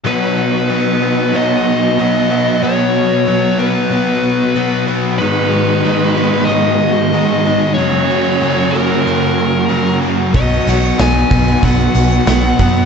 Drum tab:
HH |--------|--------|--------|--------|
SD |--------|--------|--------|--------|
BD |--------|--------|--------|--------|

HH |oooooooo|
SD |-oo---o-|
BD |o--oo--o|